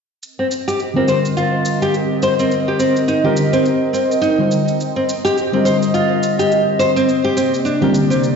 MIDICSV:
0, 0, Header, 1, 5, 480
1, 0, Start_track
1, 0, Tempo, 571429
1, 190, Time_signature, 4, 2, 24, 8
1, 7022, End_track
2, 0, Start_track
2, 0, Title_t, "Ambient pad"
2, 0, Program_c, 0, 92
2, 191, Note_on_c, 0, 60, 72
2, 192, Note_on_c, 0, 70, 67
2, 193, Note_on_c, 0, 75, 80
2, 3997, Note_off_c, 0, 70, 0
2, 3998, Note_off_c, 0, 75, 0
2, 4035, Note_on_c, 0, 75, 81
2, 5917, Note_off_c, 0, 60, 0
2, 5933, Note_off_c, 0, 75, 0
2, 5957, Note_on_c, 0, 48, 78
2, 5958, Note_on_c, 0, 58, 69
2, 5959, Note_on_c, 0, 74, 84
2, 7022, Note_off_c, 0, 48, 0
2, 7022, Note_off_c, 0, 58, 0
2, 7022, Note_off_c, 0, 74, 0
2, 7022, End_track
3, 0, Start_track
3, 0, Title_t, "Nylon-string guitar"
3, 0, Program_c, 1, 24
3, 328, Note_on_c, 1, 60, 63
3, 386, Note_off_c, 1, 60, 0
3, 568, Note_on_c, 1, 67, 87
3, 664, Note_off_c, 1, 67, 0
3, 810, Note_on_c, 1, 60, 64
3, 904, Note_off_c, 1, 60, 0
3, 909, Note_on_c, 1, 72, 81
3, 989, Note_off_c, 1, 72, 0
3, 1150, Note_on_c, 1, 65, 86
3, 1516, Note_off_c, 1, 65, 0
3, 1530, Note_on_c, 1, 67, 87
3, 1625, Note_off_c, 1, 67, 0
3, 1871, Note_on_c, 1, 72, 88
3, 1950, Note_off_c, 1, 72, 0
3, 2012, Note_on_c, 1, 60, 89
3, 2105, Note_off_c, 1, 60, 0
3, 2251, Note_on_c, 1, 67, 86
3, 2345, Note_off_c, 1, 67, 0
3, 2346, Note_on_c, 1, 60, 70
3, 2481, Note_off_c, 1, 60, 0
3, 2587, Note_on_c, 1, 63, 68
3, 2715, Note_off_c, 1, 63, 0
3, 2726, Note_on_c, 1, 67, 62
3, 2954, Note_off_c, 1, 67, 0
3, 2965, Note_on_c, 1, 60, 70
3, 3062, Note_off_c, 1, 60, 0
3, 3302, Note_on_c, 1, 60, 64
3, 3440, Note_off_c, 1, 60, 0
3, 3541, Note_on_c, 1, 63, 87
3, 3679, Note_off_c, 1, 63, 0
3, 4168, Note_on_c, 1, 60, 63
3, 4226, Note_off_c, 1, 60, 0
3, 4407, Note_on_c, 1, 67, 92
3, 4503, Note_off_c, 1, 67, 0
3, 4648, Note_on_c, 1, 60, 60
3, 4744, Note_off_c, 1, 60, 0
3, 4747, Note_on_c, 1, 72, 82
3, 4829, Note_off_c, 1, 72, 0
3, 4990, Note_on_c, 1, 65, 89
3, 5356, Note_off_c, 1, 65, 0
3, 5369, Note_on_c, 1, 67, 85
3, 5464, Note_off_c, 1, 67, 0
3, 5706, Note_on_c, 1, 72, 88
3, 5788, Note_off_c, 1, 72, 0
3, 5848, Note_on_c, 1, 60, 82
3, 5944, Note_off_c, 1, 60, 0
3, 6085, Note_on_c, 1, 67, 88
3, 6182, Note_off_c, 1, 67, 0
3, 6188, Note_on_c, 1, 60, 71
3, 6322, Note_off_c, 1, 60, 0
3, 6425, Note_on_c, 1, 62, 66
3, 6554, Note_off_c, 1, 62, 0
3, 6568, Note_on_c, 1, 67, 60
3, 6795, Note_off_c, 1, 67, 0
3, 6806, Note_on_c, 1, 60, 63
3, 6903, Note_off_c, 1, 60, 0
3, 7022, End_track
4, 0, Start_track
4, 0, Title_t, "Synth keys"
4, 0, Program_c, 2, 88
4, 786, Note_on_c, 2, 50, 67
4, 794, Note_on_c, 2, 55, 60
4, 802, Note_on_c, 2, 60, 58
4, 812, Note_on_c, 2, 65, 58
4, 820, Note_on_c, 2, 70, 75
4, 2685, Note_off_c, 2, 50, 0
4, 2688, Note_off_c, 2, 55, 0
4, 2692, Note_off_c, 2, 60, 0
4, 2698, Note_off_c, 2, 65, 0
4, 2702, Note_off_c, 2, 70, 0
4, 2719, Note_on_c, 2, 50, 83
4, 2726, Note_on_c, 2, 55, 78
4, 2728, Note_on_c, 2, 60, 78
4, 2733, Note_on_c, 2, 65, 78
4, 2736, Note_on_c, 2, 70, 100
4, 2802, Note_off_c, 2, 50, 0
4, 2805, Note_off_c, 2, 55, 0
4, 2806, Note_off_c, 2, 60, 0
4, 2808, Note_off_c, 2, 65, 0
4, 2810, Note_off_c, 2, 70, 0
4, 3680, Note_on_c, 2, 50, 64
4, 3683, Note_on_c, 2, 55, 58
4, 3689, Note_on_c, 2, 60, 59
4, 3694, Note_on_c, 2, 65, 62
4, 3698, Note_on_c, 2, 72, 70
4, 3762, Note_off_c, 2, 50, 0
4, 3763, Note_off_c, 2, 55, 0
4, 3766, Note_off_c, 2, 60, 0
4, 3769, Note_off_c, 2, 65, 0
4, 3771, Note_off_c, 2, 72, 0
4, 4637, Note_on_c, 2, 50, 70
4, 4645, Note_on_c, 2, 55, 62
4, 4655, Note_on_c, 2, 60, 64
4, 4664, Note_on_c, 2, 65, 59
4, 4672, Note_on_c, 2, 70, 76
4, 5931, Note_off_c, 2, 50, 0
4, 5935, Note_off_c, 2, 55, 0
4, 5940, Note_off_c, 2, 60, 0
4, 5945, Note_off_c, 2, 65, 0
4, 5949, Note_off_c, 2, 70, 0
4, 6562, Note_on_c, 2, 50, 86
4, 6564, Note_on_c, 2, 55, 77
4, 6569, Note_on_c, 2, 60, 83
4, 6574, Note_on_c, 2, 65, 80
4, 6579, Note_on_c, 2, 70, 91
4, 6643, Note_off_c, 2, 50, 0
4, 6644, Note_off_c, 2, 55, 0
4, 6646, Note_off_c, 2, 60, 0
4, 6649, Note_off_c, 2, 65, 0
4, 6651, Note_off_c, 2, 70, 0
4, 7022, End_track
5, 0, Start_track
5, 0, Title_t, "Drums"
5, 192, Note_on_c, 9, 82, 28
5, 276, Note_off_c, 9, 82, 0
5, 430, Note_on_c, 9, 82, 65
5, 514, Note_off_c, 9, 82, 0
5, 574, Note_on_c, 9, 82, 37
5, 658, Note_off_c, 9, 82, 0
5, 669, Note_on_c, 9, 82, 27
5, 753, Note_off_c, 9, 82, 0
5, 908, Note_on_c, 9, 82, 66
5, 992, Note_off_c, 9, 82, 0
5, 1052, Note_on_c, 9, 82, 38
5, 1136, Note_off_c, 9, 82, 0
5, 1151, Note_on_c, 9, 82, 29
5, 1235, Note_off_c, 9, 82, 0
5, 1388, Note_on_c, 9, 82, 72
5, 1472, Note_off_c, 9, 82, 0
5, 1529, Note_on_c, 9, 82, 39
5, 1613, Note_off_c, 9, 82, 0
5, 1630, Note_on_c, 9, 82, 27
5, 1714, Note_off_c, 9, 82, 0
5, 1869, Note_on_c, 9, 82, 64
5, 1953, Note_off_c, 9, 82, 0
5, 2010, Note_on_c, 9, 82, 38
5, 2094, Note_off_c, 9, 82, 0
5, 2113, Note_on_c, 9, 82, 31
5, 2197, Note_off_c, 9, 82, 0
5, 2349, Note_on_c, 9, 82, 71
5, 2433, Note_off_c, 9, 82, 0
5, 2490, Note_on_c, 9, 82, 41
5, 2574, Note_off_c, 9, 82, 0
5, 2589, Note_on_c, 9, 82, 29
5, 2673, Note_off_c, 9, 82, 0
5, 2828, Note_on_c, 9, 82, 71
5, 2912, Note_off_c, 9, 82, 0
5, 2967, Note_on_c, 9, 82, 39
5, 3051, Note_off_c, 9, 82, 0
5, 3071, Note_on_c, 9, 82, 31
5, 3155, Note_off_c, 9, 82, 0
5, 3313, Note_on_c, 9, 82, 72
5, 3397, Note_off_c, 9, 82, 0
5, 3456, Note_on_c, 9, 82, 37
5, 3540, Note_off_c, 9, 82, 0
5, 3554, Note_on_c, 9, 82, 28
5, 3638, Note_off_c, 9, 82, 0
5, 3791, Note_on_c, 9, 82, 68
5, 3875, Note_off_c, 9, 82, 0
5, 3932, Note_on_c, 9, 82, 40
5, 4016, Note_off_c, 9, 82, 0
5, 4035, Note_on_c, 9, 82, 32
5, 4119, Note_off_c, 9, 82, 0
5, 4277, Note_on_c, 9, 82, 76
5, 4361, Note_off_c, 9, 82, 0
5, 4418, Note_on_c, 9, 82, 41
5, 4502, Note_off_c, 9, 82, 0
5, 4516, Note_on_c, 9, 82, 30
5, 4600, Note_off_c, 9, 82, 0
5, 4753, Note_on_c, 9, 82, 73
5, 4837, Note_off_c, 9, 82, 0
5, 4892, Note_on_c, 9, 82, 37
5, 4976, Note_off_c, 9, 82, 0
5, 4993, Note_on_c, 9, 82, 31
5, 5077, Note_off_c, 9, 82, 0
5, 5233, Note_on_c, 9, 82, 73
5, 5317, Note_off_c, 9, 82, 0
5, 5372, Note_on_c, 9, 82, 40
5, 5456, Note_off_c, 9, 82, 0
5, 5473, Note_on_c, 9, 82, 30
5, 5557, Note_off_c, 9, 82, 0
5, 5713, Note_on_c, 9, 82, 71
5, 5797, Note_off_c, 9, 82, 0
5, 5855, Note_on_c, 9, 82, 41
5, 5939, Note_off_c, 9, 82, 0
5, 5954, Note_on_c, 9, 82, 30
5, 6038, Note_off_c, 9, 82, 0
5, 6193, Note_on_c, 9, 82, 75
5, 6277, Note_off_c, 9, 82, 0
5, 6333, Note_on_c, 9, 82, 44
5, 6417, Note_off_c, 9, 82, 0
5, 6434, Note_on_c, 9, 82, 29
5, 6518, Note_off_c, 9, 82, 0
5, 6673, Note_on_c, 9, 82, 74
5, 6757, Note_off_c, 9, 82, 0
5, 6815, Note_on_c, 9, 82, 39
5, 6899, Note_off_c, 9, 82, 0
5, 6918, Note_on_c, 9, 82, 32
5, 7002, Note_off_c, 9, 82, 0
5, 7022, End_track
0, 0, End_of_file